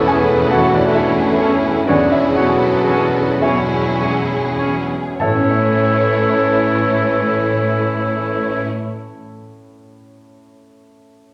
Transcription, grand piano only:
0, 0, Header, 1, 2, 480
1, 0, Start_track
1, 0, Key_signature, 3, "major"
1, 0, Tempo, 870827
1, 523, Tempo, 923077
1, 1003, Tempo, 1015228
1, 1483, Tempo, 1104972
1, 1963, Tempo, 1202405
1, 2444, Time_signature, 12, 3, 24, 8
1, 3403, Tempo, 1171875
1, 4935, End_track
2, 0, Start_track
2, 0, Title_t, "Grand piano"
2, 0, Program_c, 0, 0
2, 0, Control_c, 0, 64, 127
2, 0, Note_on_c, 0, 40, 67
2, 0, Note_on_c, 0, 52, 55
2, 0, Note_on_c, 0, 69, 51
2, 0, Note_on_c, 0, 71, 69
2, 0, Note_on_c, 0, 81, 64
2, 0, Note_on_c, 0, 83, 91
2, 42, Note_on_c, 0, 80, 77
2, 49, Note_on_c, 0, 68, 57
2, 50, Note_on_c, 0, 61, 48
2, 188, Note_off_c, 0, 52, 0
2, 263, Note_off_c, 0, 80, 0
2, 267, Note_off_c, 0, 68, 0
2, 280, Note_on_c, 0, 78, 71
2, 286, Note_on_c, 0, 66, 55
2, 295, Note_on_c, 0, 52, 58
2, 392, Note_off_c, 0, 78, 0
2, 395, Note_off_c, 0, 66, 0
2, 411, Note_on_c, 0, 62, 55
2, 411, Note_on_c, 0, 74, 67
2, 429, Note_off_c, 0, 61, 0
2, 520, Note_off_c, 0, 62, 0
2, 520, Note_off_c, 0, 74, 0
2, 520, Note_on_c, 0, 76, 66
2, 525, Note_on_c, 0, 64, 53
2, 531, Note_on_c, 0, 57, 51
2, 670, Note_off_c, 0, 52, 0
2, 765, Note_on_c, 0, 61, 48
2, 908, Note_off_c, 0, 57, 0
2, 980, Note_off_c, 0, 76, 0
2, 982, Note_off_c, 0, 40, 0
2, 983, Note_off_c, 0, 64, 0
2, 1004, Note_on_c, 0, 74, 72
2, 1006, Note_off_c, 0, 61, 0
2, 1009, Note_on_c, 0, 62, 54
2, 1012, Note_on_c, 0, 40, 61
2, 1014, Control_c, 0, 64, 0
2, 1015, Note_off_c, 0, 81, 0
2, 1015, Note_off_c, 0, 83, 0
2, 1017, Note_off_c, 0, 71, 0
2, 1018, Note_off_c, 0, 69, 0
2, 1095, Control_c, 0, 64, 127
2, 1111, Note_off_c, 0, 74, 0
2, 1113, Note_off_c, 0, 62, 0
2, 1119, Note_on_c, 0, 76, 60
2, 1128, Note_on_c, 0, 64, 41
2, 1229, Note_off_c, 0, 76, 0
2, 1233, Note_on_c, 0, 78, 60
2, 1234, Note_off_c, 0, 64, 0
2, 1239, Note_on_c, 0, 66, 51
2, 1245, Note_on_c, 0, 47, 42
2, 1489, Note_on_c, 0, 61, 45
2, 1627, Note_off_c, 0, 47, 0
2, 1698, Note_off_c, 0, 78, 0
2, 1701, Note_off_c, 0, 66, 0
2, 1714, Note_on_c, 0, 76, 59
2, 1720, Note_on_c, 0, 47, 43
2, 1721, Note_on_c, 0, 64, 44
2, 1866, Note_off_c, 0, 61, 0
2, 1970, Note_on_c, 0, 56, 39
2, 2105, Note_off_c, 0, 47, 0
2, 2212, Note_on_c, 0, 61, 41
2, 2352, Note_off_c, 0, 56, 0
2, 2427, Note_off_c, 0, 76, 0
2, 2430, Note_off_c, 0, 64, 0
2, 2433, Note_off_c, 0, 40, 0
2, 2444, Note_on_c, 0, 81, 58
2, 2449, Note_off_c, 0, 61, 0
2, 2449, Note_on_c, 0, 76, 39
2, 2450, Note_on_c, 0, 73, 43
2, 2454, Note_on_c, 0, 45, 39
2, 2457, Control_c, 0, 64, 0
2, 2481, Note_on_c, 0, 57, 39
2, 2509, Note_on_c, 0, 61, 36
2, 2536, Note_on_c, 0, 64, 35
2, 2560, Note_off_c, 0, 73, 0
2, 2566, Note_on_c, 0, 73, 39
2, 2570, Control_c, 0, 64, 127
2, 3829, Note_off_c, 0, 81, 0
2, 3833, Note_off_c, 0, 76, 0
2, 3838, Note_off_c, 0, 45, 0
2, 3866, Note_off_c, 0, 57, 0
2, 3894, Note_off_c, 0, 61, 0
2, 3922, Note_off_c, 0, 64, 0
2, 3954, Note_off_c, 0, 73, 0
2, 4935, End_track
0, 0, End_of_file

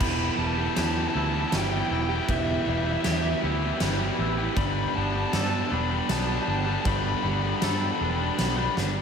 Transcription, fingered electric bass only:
0, 0, Header, 1, 2, 480
1, 0, Start_track
1, 0, Key_signature, 1, "minor"
1, 0, Tempo, 761421
1, 4, Time_signature, 3, 2, 24, 8
1, 5685, End_track
2, 0, Start_track
2, 0, Title_t, "Fingered electric bass"
2, 0, Program_c, 0, 33
2, 3, Note_on_c, 0, 28, 87
2, 180, Note_off_c, 0, 28, 0
2, 240, Note_on_c, 0, 28, 93
2, 419, Note_off_c, 0, 28, 0
2, 485, Note_on_c, 0, 40, 85
2, 661, Note_off_c, 0, 40, 0
2, 724, Note_on_c, 0, 38, 97
2, 901, Note_off_c, 0, 38, 0
2, 964, Note_on_c, 0, 31, 96
2, 1140, Note_off_c, 0, 31, 0
2, 1199, Note_on_c, 0, 28, 98
2, 1377, Note_off_c, 0, 28, 0
2, 1442, Note_on_c, 0, 28, 95
2, 1618, Note_off_c, 0, 28, 0
2, 1684, Note_on_c, 0, 28, 98
2, 1860, Note_off_c, 0, 28, 0
2, 1924, Note_on_c, 0, 40, 85
2, 2100, Note_off_c, 0, 40, 0
2, 2162, Note_on_c, 0, 38, 86
2, 2338, Note_off_c, 0, 38, 0
2, 2399, Note_on_c, 0, 31, 98
2, 2577, Note_off_c, 0, 31, 0
2, 2638, Note_on_c, 0, 33, 95
2, 2815, Note_off_c, 0, 33, 0
2, 2879, Note_on_c, 0, 31, 86
2, 3056, Note_off_c, 0, 31, 0
2, 3123, Note_on_c, 0, 31, 102
2, 3299, Note_off_c, 0, 31, 0
2, 3361, Note_on_c, 0, 43, 89
2, 3538, Note_off_c, 0, 43, 0
2, 3599, Note_on_c, 0, 28, 83
2, 3777, Note_off_c, 0, 28, 0
2, 3841, Note_on_c, 0, 35, 91
2, 4018, Note_off_c, 0, 35, 0
2, 4083, Note_on_c, 0, 31, 104
2, 4259, Note_off_c, 0, 31, 0
2, 4321, Note_on_c, 0, 31, 105
2, 4498, Note_off_c, 0, 31, 0
2, 4564, Note_on_c, 0, 31, 109
2, 4740, Note_off_c, 0, 31, 0
2, 4807, Note_on_c, 0, 43, 93
2, 4983, Note_off_c, 0, 43, 0
2, 5048, Note_on_c, 0, 28, 97
2, 5224, Note_off_c, 0, 28, 0
2, 5291, Note_on_c, 0, 35, 91
2, 5467, Note_off_c, 0, 35, 0
2, 5531, Note_on_c, 0, 31, 90
2, 5685, Note_off_c, 0, 31, 0
2, 5685, End_track
0, 0, End_of_file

